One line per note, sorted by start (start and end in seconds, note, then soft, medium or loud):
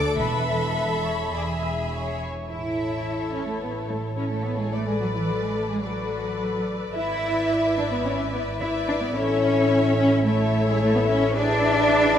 0.00 0.17 D2 medium
0.00 0.16 A4 medium
0.00 0.19 A4 medium
0.00 0.18 D5 medium
0.00 0.18 D6 medium
0.18 1.32 E1 medium
0.18 1.33 E2 medium
0.18 1.31 A4 medium
0.18 0.70 B4 medium
0.18 1.31 E5 medium
0.18 2.17 B5 medium
0.76 0.84 B4 medium
1.04 1.33 C#5 medium
1.33 2.26 E1 medium
1.33 2.27 E2 soft
1.33 2.29 G#4 medium
1.33 1.41 D5 medium
1.33 2.26 E5 medium
1.62 1.70 E5 medium
1.91 2.48 C#5 soft
2.48 6.90 A1 soft
2.48 3.28 E4 medium
2.48 4.13 E4 soft
2.48 4.13 A4 soft
2.48 4.13 C#5 soft
2.48 3.29 E5 medium
3.32 3.46 C#4 medium
3.32 3.46 C#5 medium
3.46 3.60 A3 medium
3.46 3.61 A4 soft
3.61 3.69 B3 medium
3.61 3.89 B4 soft
3.89 3.97 A3 medium
3.89 4.17 A4 soft
4.16 4.30 C#4 medium
4.16 4.71 E4 soft
4.16 4.71 A4 soft
4.16 4.71 C#5 soft
4.16 4.23 C#5 soft
4.31 4.44 A3 medium
4.31 4.45 A4 soft
4.44 4.59 B3 medium
4.44 4.50 B4 medium
4.58 4.73 G#3 medium
4.58 4.72 G#4 medium
4.72 4.86 A3 medium
4.72 4.78 A4 medium
4.72 5.82 A4 soft
4.72 5.82 B4 medium
4.72 5.82 D5 medium
4.86 4.92 G#3 medium
4.86 5.00 G#4 soft
5.00 5.06 F#3 medium
5.00 5.06 F#4 soft
5.14 5.28 E3 medium
5.14 5.20 E4 soft
5.27 5.42 F#3 medium
5.27 5.33 F#4 medium
5.42 5.56 G#3 medium
5.42 5.55 G#4 soft
5.56 5.70 A3 medium
5.56 5.69 A4 medium
5.69 5.84 G#3 medium
5.69 5.83 G#4 soft
5.83 6.66 F#3 soft
5.83 6.67 F#4 soft
5.83 6.92 A4 medium
5.83 6.92 B4 medium
5.83 6.92 D5 soft
6.94 9.12 G#1 soft
6.94 8.59 E4 medium
6.94 7.74 E4 medium
6.94 8.57 B4 medium
6.94 8.57 D5 medium
6.94 8.59 E5 medium
6.94 7.74 E5 medium
7.77 7.83 D4 medium
7.77 7.91 D5 medium
7.91 8.05 B3 medium
7.91 8.05 B4 medium
8.05 8.33 C#4 medium
8.05 8.13 C#5 medium
8.32 8.41 B3 medium
8.32 8.60 B4 medium
8.60 8.68 E4 medium
8.60 9.13 E4 medium
8.60 9.14 B4 medium
8.60 9.14 D5 medium
8.60 8.88 E5 medium
8.60 9.14 E5 medium
8.88 8.93 D4 medium
8.88 9.01 D5 medium
9.01 9.15 B3 medium
9.01 9.07 B4 medium
9.14 12.19 A1 medium
9.14 9.96 C#4 medium
9.14 10.23 E4 medium
9.14 10.23 A4 medium
9.14 10.24 C#5 medium
9.14 9.97 C#5 medium
9.14 10.24 E5 medium
9.98 10.25 C#4 medium
9.98 10.25 C#5 medium
10.25 10.66 A3 medium
10.25 11.33 E4 medium
10.25 11.33 A4 medium
10.25 10.66 A4 medium
10.25 11.33 C#5 medium
10.25 11.33 E5 medium
10.67 10.81 G#3 medium
10.67 10.81 G#4 medium
10.80 10.94 A3 medium
10.80 10.94 A4 medium
10.94 11.00 B3 medium
10.94 11.08 B4 medium
11.08 11.35 C#4 medium
11.08 11.36 C#5 medium
11.35 12.19 D4 loud
11.35 12.19 E4 medium
11.35 12.19 G#4 medium
11.35 12.19 B4 medium
11.35 12.19 D5 loud
11.35 12.19 E5 medium